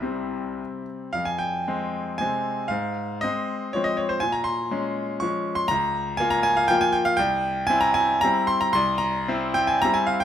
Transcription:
Already playing: C2 E4 E5
0.02 C3 G3 C4
1.13 F2 F5
1.25 G#5
1.39 G5
1.68 G#3 C4
2.18 C3 G#3 C4 G#5
2.68 G#2 F5
3.21 G#3 C4 D#5
3.73 F3 G#3 C4 C#5
3.84 D#5
3.97 C#5
4.09 C5
4.20 A#2 G#5
4.32 A#5
4.44 C6
4.71 G#3 C#4
5.20 F3 G#3 C#4 C#6
5.55 C6
5.68 C#2 A#5
6.17 A#3 F4 G#5
6.30 A#5
6.43 G#5
6.57 F5
6.68 F3 A#3 F4 G5
6.81 G#5
6.92 G5
7.05 F5
7.17 C2 G5
7.67 C4 E4 G#5
7.81 A#5
7.94 G#5
8.21 G3 C4 E4 A#5
8.47 C6
8.61 A#5
8.73 C2 C6
8.98 A#5
9.28 C4 E4
9.54 G5
9.67 G#5
9.82 G3 C4 E4 A#5
9.94 G#5
10.07 F5
10.20 G5

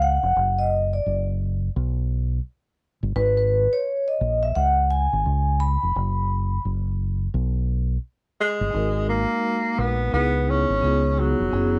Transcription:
Already playing: C#2
0.02 F#5
0.23 F1
0.36 F#1
0.59 D#5
0.93 D5
1.06 F#1
1.76 B1
3.03 G1
3.16 G#1 B4
3.37 B4
3.73 C#5
4.08 D#5
4.21 A#1
4.43 E5
4.55 C#2 F#5
4.91 G#5
5.13 G#1
5.26 C#2
5.60 B5
5.83 F1
5.96 F#1
6.65 F#1
7.34 B1
8.41 G#3
8.61 G1
8.71 G#1 G#3 D#4 F#4
8.76 A#4
9.09 A#3
9.78 A#1 B3
10.12 C#2 B3 D#4 E4 G#4
10.50 C#4
10.70 G#1
10.81 C#2 B3 D#4 F4 G#4
11.19 F#3
11.40 F1
11.51 F#1 B3 C#4 E4 G#4

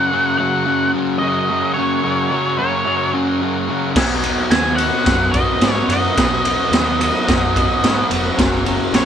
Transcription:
Already playing: F#2 C#3 F#3 C#4 F#4 A#4 F#5
0.12 F#2 C#3 F#3 C#4 F#4 A#4
0.38 F#2 C#3 F#3 C#4 F#4 A#4 F#5
0.66 F#2 C#3 F#3 C#4 F#4 A#4
0.94 F#2 C#3 F#3 C#4 F#4 A#4
1.19 F#2 C#3 C#4 F#4 A#4 D#5
1.23 F#3
1.47 F#2 C#3 C#4 F#4 A#4
1.51 F#3
1.72 C#4 F#4 C#5
1.77 F#2 C#3 F#3
2.02 F#2 C#3 F#3 C#4 F#4 A#4
2.28 F#2 C#3 C#4 F#4 A#4
2.32 F#3
2.54 C#4 F#4 A#4
2.59 F#2 C#3 F#3 C#5
2.83 F#2 C#3 F#3 C#4 F#4 A#4
3.12 F#2 C#3 F#3 C#4 F#4 A#4
3.38 F#2 C#3 C#4 F#4 A#4
3.43 F#3
3.65 C#4 F#4 A#4
3.69 F#2 C#3 F#3
3.90 D#4 F#4 B4
3.96 B1 B2 F#3 B3, kick, snare, crash
4.20 B2 D#4 F#4 B4, ride
4.24 F#3 B3
4.46 D#4 F#4 C#5
4.50 D#2 B2 F#3 B3 G#5, snare, ride
4.76 B2 F#3 D#4 F#4 B4 F#5, ride
4.81 B3
5.03 F#2 B2 D#4 F#4 B4, kick, ride
5.07 F#3 B3, snare
5.31 B2 D#4 F#4 B4 D#5, kick, ride
5.36 F#3 B3
5.61 G#2 B2 F#3 B3 D#4 F#4 B4, snare, ride
5.73 C#5
5.88 F#2 B2 F#3 B3 D#4 F#4 B4 D#5, ride
6.15 B1 B2 D#4 F#4 B4, kick, snare, ride
6.19 F#3 B3
6.40 D#4 F#4 B4
6.45 B2 F#3 B3, ride
6.70 D#2 B2 D#4 F#4 B4, snare, ride
6.74 F#3 B3
6.98 B2 F#3 D#4 F#4 B4, ride
7.02 B3
7.24 B2 F#3 D#4 F#4 A#4
7.29 F#2 B3, kick, snare, ride
7.52 B2 D#4 F#4 B4
7.56 F#3 B3, kick, ride
7.78 D#4 F#4 B4
7.83 G#2 B2 F#3 B3, snare, ride
8.07 F1 D#4 F#4 B4, ride
8.11 B2 F#3 B3
8.35 F#1 F#2 C#4 F#4 A#4, kick, ride
8.39 C#3 F#3, snare
8.61 C#4 F#4 A#4
8.66 F#2 C#3 F#3, ride
8.92 A#1 F#2 C#3 F#3 C#4 F#4 A#4 C#5, snare, ride

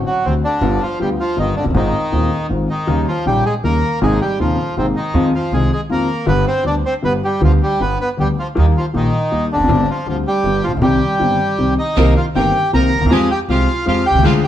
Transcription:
0.07 F#3 F#4
0.25 D2 C3 D3 A3 C4 F#4
0.44 D3 D4
0.61 G1 G2 D3 G3 B3 F4
0.82 F3 F4
0.99 D2 D3 G3 B3 F4 G4
1.20 F3 F4
1.36 G1 G2 D3 D#3 G3 B3 D#4 F4
1.57 F1 D3 D4
1.61 F1 F#1
1.66 F#1
1.70 G1
1.74 G#1 G#2 D#3 G#3 C4 D#4 F4
2.12 D#1 D#2 D#3 G#3 C4 F4
2.49 G#1 G#2 D#3 G#3 C4 F4
2.70 D#3 D#4
2.87 D#2 C#3 D#3 G3 A#3 D#4
3.08 F3 F4
3.26 A#1 A#2 C#3 G3 A#3 D#4 G4
3.46 G#3 G#4
3.64 D#2 C#3 D#3 G3 A#3 D#4 A#4
4.02 G#1 G#2 C3 G#3 A#3 D#4 G#4
4.21 G3 G4
4.39 D#1 D#2 C3 F3 G#3 A#3 D#4 F4
4.77 G#1 G#2 C3 G#3 A#3 C4 D#4
4.96 D#3 D#4
5.14 F2 D#3 F3 G#3 C4 F4
5.35 F3 F4
5.51 C2 C3 D#3 G#3 C4 F4 G#4
5.73 G#3 G#4
5.89 F2 D#3 F3 G#3 A#3 C4 F4 A#4
6.26 G1 G2 D3 G3 B3 G4 B4
6.47 C4 C5
6.64 D2 D3 G3 B3 D4 G4 D5
6.86 C4 C5
7.02 G1 G2 D3 G3 B3 G4 B4
7.25 G3 G4
7.41 D2 D3 F3 G3 B3 F4 G4
7.63 G3 G4
7.80 G1 G2 D3 G3 B3 G4 B4
8.01 B3 B4
8.17 D2 D3 G3 B3 G4
8.40 F3 F4
8.55 D#2 D#3 G3 A#3 D#4 G4
8.77 F3 F4
8.93 A#1 A#2 D#3 G3 A#3 D#4 G4
9.31 D#2 D#3 G3 A#3 G4
9.52 E1 E2 D3 D4
9.60 F1 F2
9.64 F#1 F#2 D3
9.69 G1 G2 G3 C4 G4
9.90 F3 F4
10.06 D2 D3 F3 G3 C4 F4 G4
10.27 G3 G4
10.43 G1 G2 D3 G3 B3 G4
10.64 A1 F3 F4
10.68 A1
10.72 A#1
10.77 B1
10.82 C2 C3 D#3 G3 C4 G4
11.19 G1 G2 D#3 G3 C4 G4
11.58 C2 C3 D#3 G3 C4 G4
11.79 D#4 D#5
11.96 C2 C3 D#3 A#3 C4 D#4 G4 A#4
12.17 F4 F5
12.35 G1 G2 D#3 A#3 C4 D#4 G4 A#4 G5
12.73 C2 C3 D#3 A#3 C4 D#4 G4 A#4 A#5
12.96 D2
13.01 D#2 E2
13.05 E2
13.10 F2 F3 G#3 C4 F4 G4 G#4 G#5
13.31 G4 G5
13.49 C2 C3 F3 G#3 C4 F4 G4 F5
13.86 F2 F3 G#3 C4 F4 G4 F5
14.06 B1 G4 G5
14.11 B1
14.15 C2 C#2
14.23 D2 D3 F3 G#3 D4 F4 G#4 F5
14.44 G5

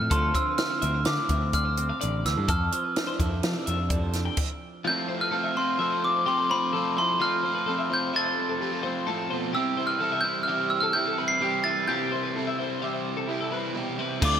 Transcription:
Already playing: F2 F3 C4 E4 F6
0.10 D2 D3 F3 C4 D4 F4 A4 C6, kick, closed hi-hat
0.34 F3 C5 E6, kick, closed hi-hat
0.47 B4
0.58 C4 F6, snare, closed hi-hat
0.70 C5
0.82 D2 C4 E5, closed hi-hat
0.94 D4
1.05 A2 D3 F5 D6, snare, closed hi-hat
1.18 D5
1.29 D2 C4 E5, kick, closed hi-hat
1.53 C4 D5 F6, kick, closed hi-hat
1.65 D4 C5
1.77 C4, closed hi-hat
1.90 F5
2.01 A1 D3 D5, closed hi-hat
2.25 D2 E3 B4 E6, snare, closed hi-hat
2.36 G2 A4
2.48 F2 A4 F6, kick, closed hi-hat
2.72 F3 C5, closed hi-hat
2.84 B4
2.96 D4, snare, closed hi-hat
3.07 C5
3.20 F2 A4 E5, kick, closed hi-hat
3.43 C3 F3 F5, snare, closed hi-hat
3.55 D5
3.66 F2 D4 E5, closed hi-hat
3.89 A4 D5, kick, closed hi-hat
4.02 C5
4.13 D4, snare, closed hi-hat
4.25 G5
4.37 kick, crash
4.85 F2 F3 A3 C4 E4 F4 G6
4.89 A4
5.08 A3 C4 F4 C5
5.20 B4 F6
5.31 F3 A3 C4 F4 A4
5.44 E5
5.56 A3 C4 F4 C5 C6
5.79 F3 A3 C4 F4 A4 E5
5.91 C5
6.04 C4 D6
6.15 A4
6.26 F3 A3 C4 F4 G4 C6
6.38 A4
6.49 C4 F4 C5 B5
6.54 A3
6.72 F2 F3 A3 C4 A4
6.77 F4
6.97 A3 C4 E4 F4 C5 C6
7.19 F2 F3 A3 C4 F4 A4 F6
7.43 C4 F4 C5
7.47 A3
7.55 B4
7.66 F3 A3 C4 A4
7.70 F4
7.79 E5
7.90 A3 C4 F4 C5 G6
8.13 F3 A3 C4 F4 A4 E5 A6
8.25 C5
8.38 C4
8.49 A4
8.61 F3 A3 C4 F4 G4
8.72 A4
8.83 A3 C4 F4 C5
9.07 A2 F3 A3 C4 F4 A4
9.30 B2 A3 C4 F4 C5
9.53 C3 E3 G3 C4 E4 G4 E6
9.77 G3 C4 E4 C5
9.87 B4 F6
10.00 E3 G3 C4 E4 A4
10.12 E5
10.21 E4 C5 G6
10.25 G3 C4 E4
10.43 F6
10.47 C3 E3 G3 C4 E4 G4 E5
10.59 C5
10.70 E6
10.81 A4 F6
10.93 E3 G3 C4 E4 G4 G6
11.07 A4
11.17 G3 C4 E4 B4
11.28 C7
11.40 C3 E3 G3 C4 E4 G4
11.64 G3 C4 E4 B4 A6
11.87 C3 E3 G3 C4 E4 F4 G4 G6
12.01 G4
12.12 C4 E4 C5
12.16 G3
12.23 B4
12.35 E3 G3 C4 E4 A4
12.47 E5
12.59 G3 C4 E4 C5
12.82 C3 E3 G3 C4 E4 G4 E5
12.94 C5
13.17 A4
13.27 E3 G3 C4 E4 G4
13.41 A4
13.51 G3 C4 E4 B4
13.74 B2 C3 E3 G3 C4 E4 G4
13.97 C3 C4 E4 B4
14.01 G3
14.20 D2 D3 F3 A3 C4 D4 E4 F4, kick, crash
14.25 D6

